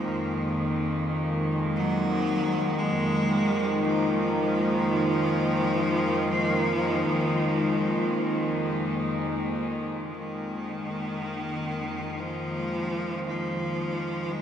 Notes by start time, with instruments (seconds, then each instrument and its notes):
Already playing: cello section F2 D#3 G#3 A#3, synth drone D#3, cello F3, singing bowl A#4
1.75 cello F#3
2.79 cello G#3
3.84 cello F3
10.14 cello D#3, synth drone D#3
12.20 cello F3
13.26 cello F3
14.31 cello G#3